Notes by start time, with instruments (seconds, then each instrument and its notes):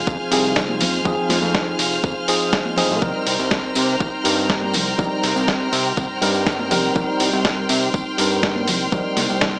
Already playing: tine electric piano F3 C4 D#4 G#4, violin section C5 F5 G#5 F6
0.07 analog synth bass F2, kick, tambourine
0.31 analog synth bass C2, tine electric piano F3 C4 D#4 G#4, open hi-hat, tambourine
0.44 tambourine
0.55 kick, snare, tambourine
0.68 high conga
0.80 analog synth bass F2, open hi-hat, tambourine, low conga
0.93 tambourine
1.04 analog synth bass F2, tine electric piano F3 C4 D#4 G#4, kick, tambourine, low conga
1.29 analog synth bass F2, snare, open hi-hat, tambourine, high conga
1.42 analog synth bass F2, tambourine
1.54 kick, snare, tambourine
1.79 analog synth bass F1, open hi-hat, tambourine
1.92 tambourine
2.04 analog synth bass F2, kick, tambourine
2.28 tine electric piano F3 C4 D#4 G#4, open hi-hat, tambourine
2.40 tambourine
2.52 kick, snare, tambourine
2.65 high conga
2.76 analog synth bass F1, tine electric piano F3 C4 D#4 G#4, open hi-hat, tambourine, low conga
2.89 analog synth bass A#2, tambourine
3.01 analog synth bass C2, tine electric piano G3 C4 D#4 A#4, violin section G5 A#5, kick, tambourine, low conga
3.27 analog synth bass C2, open hi-hat, tambourine
3.39 analog synth bass C2, tambourine
3.51 kick, snare, tambourine
3.75 analog synth bass C3, open hi-hat, tambourine
3.89 tambourine
4.00 analog synth bass C2, kick, tambourine
4.24 analog synth bass G2, tine electric piano G3 C4 D#4 A#4, open hi-hat, tambourine
4.38 tambourine
4.49 kick, snare, tambourine
4.62 high conga
4.73 analog synth bass C2, open hi-hat, tambourine, low conga
4.87 tambourine
4.98 analog synth bass C2, tine electric piano G3 C4 D#4 A#4, kick, tambourine, low conga
5.23 analog synth bass C2, snare, open hi-hat, tambourine
5.36 analog synth bass C2, tambourine
5.48 kick, snare, tambourine
5.72 analog synth bass C3, open hi-hat, tambourine
5.85 tambourine
5.97 analog synth bass C2, kick, tambourine
6.10 analog synth bass G2
6.21 analog synth bass G2, tine electric piano G3 C4 D#4 A#4, open hi-hat, tambourine
6.34 tambourine
6.46 kick, snare, tambourine
6.59 high conga
6.71 analog synth bass C2, tine electric piano G3 C4 D#4 A#4, open hi-hat, tambourine, low conga
6.84 tambourine
6.94 analog synth bass C2, tine electric piano G3 C4 D#4 A#4, violin section C6, kick, tambourine, low conga
7.20 analog synth bass C2, open hi-hat, tambourine
7.33 analog synth bass C2, tambourine
7.45 kick, snare, tambourine
7.69 analog synth bass C3, open hi-hat, tambourine
7.83 tambourine
7.94 analog synth bass C2, kick, tambourine
8.18 analog synth bass G2, tine electric piano G3 C4 D#4 A#4, open hi-hat, tambourine
8.31 tambourine
8.43 kick, snare, tambourine
8.56 high conga
8.68 analog synth bass C2, open hi-hat, tambourine, low conga
8.80 tambourine
8.92 analog synth bass C2, tine electric piano G3 C4 D#4 A#4, kick, tambourine, low conga
9.17 analog synth bass C2, snare, open hi-hat, tambourine, high conga
9.29 analog synth bass C2, tambourine
9.41 kick, snare, tambourine